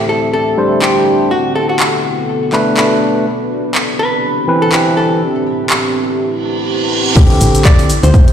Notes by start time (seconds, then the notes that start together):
Already playing: D3 C4 D4 E4 G4 A4 E5
0.09 A4
0.33 A4
0.57 G3 D4 C5
0.82 G3 D4 G4 C5, clap
1.31 B3 D4 F#4 A4
1.36 F#4
1.42 B4
1.55 A4
1.69 F#4
1.80 clap
1.87 D5
2.52 A3 D4 B4, clap
2.77 A3 D4 B4, clap
3.26 C3 C4 E4 G4 B4
3.44 G4
3.75 clap
3.90 E5
3.99 B4
4.47 E3 C4 B4
4.62 A4
4.72 E3 C4 G4 B4, clap
4.97 A4
5.21 A2 C4 B4
5.70 clap
6.19 reverse cymbal
7.15 D2 D3 C4 D4 E4 G4 A4, kick, crash, downlifter, shaker
7.30 closed hi-hat
7.41 A1, open hi-hat, shaker
7.55 closed hi-hat, shaker
7.65 D5, kick, clap, shaker
7.79 open hi-hat
7.90 open hi-hat, shaker
8.03 D2 C5, closed hi-hat, shaker
8.14 kick, shaker
8.28 closed hi-hat